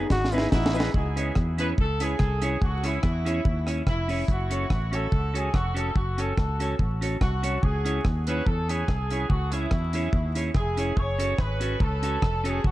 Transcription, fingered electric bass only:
0.11 G#1
0.53 A1
0.95 C#2
1.37 E2
1.78 C#2
2.20 C2
2.62 C#2
3.04 E2
3.45 D#2
3.87 F1
4.29 F#1
4.71 A1
5.13 C#2
5.54 F1
5.96 F#1
6.38 C#2
6.80 A1
7.21 C2
7.63 C#2
8.05 D#2
8.47 E2
8.89 C2
9.30 C#2
9.72 E2
10.13 D#2
10.55 F1
10.97 F#1
11.39 G#1
11.81 C#2
12.23 F1
12.65 F#1

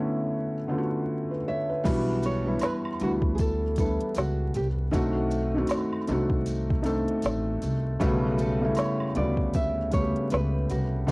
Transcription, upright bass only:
1.85 B1
3.01 D2
4.16 C#2
4.55 C2
4.93 B1
6.09 C2
7.24 A1
7.63 C2
8.01 B1
9.16 D2
10.32 C#2
10.71 C2
11.08 B1

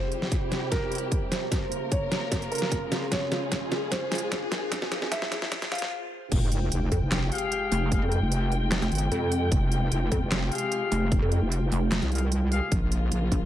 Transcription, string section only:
Already playing: C3 G3 E4 G4
1.52 C#3 A#3 F4 A#4
3.12 G#3 G#4
4.72 C3 G#3
6.32 C3 G#3 F4 G5
12.72 C#3 F3 A#3 F4

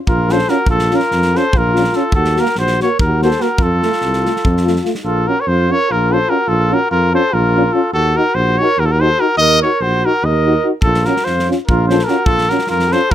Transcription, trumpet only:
0.09 A#4
0.32 C5
0.50 A#4
0.71 A4
0.95 A#4
1.37 C5
1.58 A#4
1.96 A4
2.15 A4
2.40 A#4
2.59 C5
2.83 C#5
3.00 A#4
3.23 C5
3.42 A#4
3.63 A4
5.04 A4
5.28 A#4
5.40 C#5
5.48 C5
5.72 C#5
5.92 A#4
6.13 C5
6.30 A#4
6.49 A4
6.74 A#4
6.92 A#4
7.15 C5
7.34 A#4
7.73 A4
7.94 A4
8.17 A#4
8.35 C5
8.58 C#5
8.80 A#4
8.86 A4
8.92 A#4
9.01 C5
9.20 A#4
9.38 D#5
9.62 C#5
9.81 C5
10.05 A#4
10.25 D#5
10.83 A4
11.05 A#4
11.25 C5
11.66 A#4
11.88 C5
12.05 A#4
12.26 A4
12.50 A#4
12.70 A#4
12.93 C5

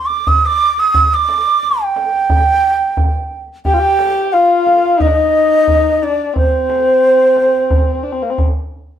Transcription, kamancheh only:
3.66 G4
3.74 F4
3.80 G4
4.34 F4
4.99 D#4
5.07 D4
5.14 D#4
6.03 D4
6.34 C4
8.03 D4
8.12 C4
8.23 A#3
8.30 C4

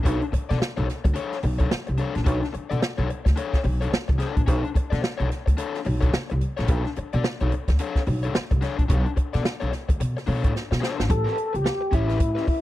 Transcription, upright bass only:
0.06 B1
0.33 muted upright bass stroke
0.51 B2
0.77 B1
1.05 D2
1.43 B1
1.72 muted upright bass stroke
1.89 C2
2.16 A#1
2.27 B1
2.55 muted upright bass stroke
2.71 B2
2.98 B1
3.26 D2
3.64 B1
3.92 muted upright bass stroke
4.09 C2
4.37 A#1
4.48 B1
4.76 muted upright bass stroke
4.92 B2
5.20 B1
5.47 D2
5.86 B1
6.14 muted upright bass stroke
6.32 C2
6.59 A#1
6.69 B1
6.98 muted upright bass stroke
7.14 B2
7.41 B1
7.68 D2
8.07 B1
8.36 muted upright bass stroke
8.51 C2
8.79 A#1
8.90 B1
9.17 muted upright bass stroke
9.35 B2
9.62 B1
9.89 D2
10.00 B2
10.28 B2
10.44 A2
10.72 B2
10.99 G#1
11.10 A1
11.54 C#2
11.93 A1
12.20 A2
12.48 muted upright bass stroke

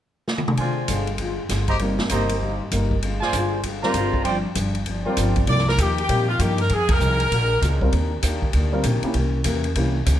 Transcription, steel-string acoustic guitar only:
0.58 D3 G#3 C4 F4
0.88 D3 G#3 C4 F4
1.19 D3 G#3 C4 F4
1.49 D3 G#3 C4 F4
1.80 C3 G3 A#3 D#4
2.10 C3 G3 A#3 D#4
2.40 C3 G3 A#3 D#4
2.71 C3 G3 A#3 D#4
3.02 D3 G#3 C4 F4
3.34 D3 G#3 C4 F4
3.64 D3 G#3 C4 F4
3.95 D3 G#3 C4 F4
4.25 G2 F3 C4 D4
4.55 G2 F3 C4 D4
4.87 G2 F3 C4 D4
5.16 G2 F3 C4 D4
5.48 C3 F3 A#3 D#4
5.80 C3 F3 A#3 D#4
6.10 C3 F3 A#3 D#4
6.39 C3 F3 A#3 D#4
6.71 F2 D#3 G#3 C4
7.01 F2 D#3 G#3 C4
7.30 A#2 G#3 D4 F#4
7.61 A#2 G#3 D4 F#4
7.92 D#3 A#3 D4 G4
8.24 D#3 A#3 D4 G4
8.54 D#3 A#3 D4 G4
8.85 D#3 A#3 D4 G4
9.15 C3 E3 A#3 C#4
9.44 C3 E3 A#3 C#4
9.76 C3 E3 A#3 C#4
10.07 C3 E3 A#3 C#4

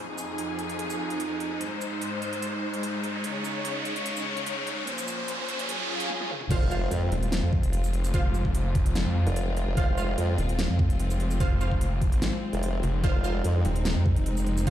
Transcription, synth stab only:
6.51 F4 C5 F5
6.71 F4 C5 F5
8.14 F4 C5 F5
9.77 F4 C5 F5
9.97 F4 C5 F5
11.40 F4 C5 F5
11.61 F4 C5 F5
13.04 F4 C5 F5
13.24 F4 C5 F5
14.67 F4 C5 F5

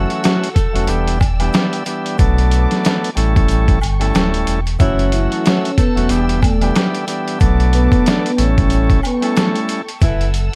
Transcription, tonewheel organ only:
Already playing: E3 F#3 A3 C#4 F#4
0.73 E3 F#3 A3 C#4 F#4
0.87 E3 G3 B3 D4 G4
1.39 E3 G3 B3 D4 G4
1.86 E3 G3 B3 D4 G4
2.18 F#3 A3 B3 D4 A4
3.15 G3 A3 C#4 E4 A4
3.35 G3 A3 C#4 E4 A4
3.99 G3 A3 C#4 E4 A4
4.79 E3 F#3 A3 C#4 F#4
5.95 E3 F#3 A3 C#4 F#4
6.08 E3 G3 B3 D4 G4
6.61 E3 G3 B3 D4 G4
7.07 E3 G3 B3 D4 G4
7.39 F#3 A3 B3 D4 A4
8.37 G3 A3 C#4 E4 A4
8.56 G3 A3 C#4 E4 A4
9.21 G3 A3 C#4 E4 A4

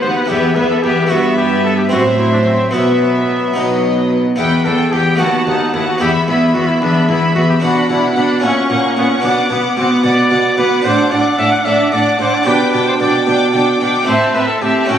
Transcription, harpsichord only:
Already playing: B3 F#4
0.03 D#2
0.26 B3 E4
0.30 E2
0.56 E2
0.84 E2
1.07 B3 E4
1.11 G2
1.89 A2 C4 E4
2.71 B2 B3 E4
3.54 B2 B3 D#4
4.36 E2 B3 E4
4.66 E2
4.93 E2
5.15 A3 B3 F#4
5.20 D#2
5.47 D#2
5.74 D#2
5.98 E2 B3 E4
6.28 E2
6.55 E2
6.82 E2
7.09 E2
7.36 E2
7.60 B2 B3 D4
7.90 B2
8.16 B2
8.40 A#2 C#4 E4
8.70 A#2
8.97 A#2
9.20 B2 B3 D4
9.49 B2
9.77 B2
10.04 B2
10.31 B2
10.57 B2
10.82 A2 D4
11.11 A2
11.39 A2
11.65 A2
11.92 A2
12.19 A2
12.43 B2 D4 G4
12.73 B2
13.00 B2
13.27 B2
13.54 B2
13.81 B2
14.03 A3 C4 E4
14.08 A2
14.35 A2
14.62 A2
14.85 A3 C#4 E4
14.89 A2

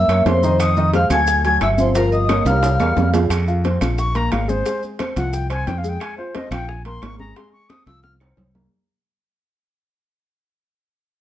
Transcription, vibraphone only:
Already playing: E5
0.27 C5
0.60 D#5
0.95 F5
1.12 G#5
1.45 G#5
1.62 E5
1.79 C5
1.96 A#4
2.12 D#5
2.46 F5

